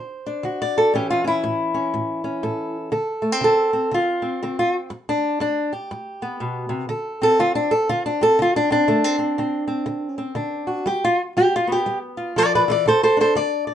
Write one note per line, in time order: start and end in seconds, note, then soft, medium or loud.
0.00 0.41 D3 medium
0.00 0.61 C5 soft
0.26 0.93 D4 medium
0.43 0.90 D3 medium
0.43 0.77 F#4 medium
0.62 0.95 D5 medium
0.78 0.95 A4 medium
0.94 1.40 A2 medium
0.94 2.93 E3 medium
0.94 1.23 C#4 medium
0.94 1.10 G4 medium
1.10 1.27 F4 medium
1.24 1.73 C#4 soft
1.24 2.76 E4 loud
1.44 1.90 A2 medium
1.74 2.23 C#4 soft
1.94 2.40 A2 medium
2.24 2.91 C#4 soft
2.43 2.89 A2 medium
2.43 2.91 A4 soft
2.92 3.38 D3 medium
2.92 3.42 A4 medium
3.22 3.32 A3 soft
3.32 3.72 C4 soft
3.41 3.88 D3 medium
3.41 3.93 A4 medium
3.73 4.21 C4 soft
3.91 4.38 D3 medium
3.91 4.58 F4 medium
4.22 4.42 C4 soft
4.43 4.88 D3 medium
4.43 4.90 C4 medium
4.59 4.75 F4 medium
4.90 5.37 G2 medium
5.09 5.40 D4 medium
5.40 5.86 G2 medium
5.40 5.71 D4 medium
5.73 6.88 G4 soft
5.91 6.37 G2 medium
6.22 6.88 B3 medium
6.40 6.69 B2 medium
6.69 6.88 C3 medium
6.89 7.35 D3 medium
6.89 7.23 A4 medium
7.22 8.20 C4 medium
7.22 7.40 A4 loud
7.39 7.85 D3 medium
7.39 7.55 F4 loud
7.55 7.72 D4 medium
7.71 7.88 A4 medium
7.89 8.35 D3 medium
7.89 8.05 F4 loud
8.06 8.22 D4 medium
8.21 8.69 C4 soft
8.21 8.39 A4 loud
8.39 8.85 D3 medium
8.39 8.56 F4 medium
8.56 8.71 D4 loud
8.70 8.87 C4 soft
8.70 10.21 D4 loud
8.88 9.34 D3 medium
8.88 9.04 A3 medium
9.04 9.17 C4 soft
9.19 9.38 C4 medium
9.38 9.84 D3 medium
9.38 9.66 C4 soft
9.68 10.17 C4 soft
9.86 10.33 D3 medium
10.18 10.85 C4 soft
10.35 10.82 D3 medium
10.35 10.87 D4 soft
10.67 10.87 F#4 soft
10.86 11.32 G3 medium
10.86 11.04 G4 medium
11.04 11.21 F4 medium
11.37 11.83 G3 medium
11.37 11.54 G4 medium
11.56 11.71 F4 medium
11.67 12.36 B3 soft
11.72 11.98 G4 loud
11.86 12.32 G3 medium
12.17 12.84 F4 soft
12.36 12.66 F3 medium
12.36 12.42 B4 loud
12.36 12.54 D5 loud
12.55 12.62 B4 medium
12.55 12.70 D5 medium
12.68 12.87 E3 medium
12.68 12.87 D5 loud
12.86 13.32 D3 medium
12.86 13.03 A4 medium
12.86 13.02 C5 loud
13.03 13.19 A4 medium
13.03 13.19 C5 loud
13.17 13.74 D4 soft
13.17 13.36 A4 medium
13.21 13.36 C5 medium
13.35 13.74 D3 medium
13.35 13.66 D5 loud
13.67 13.74 D5 soft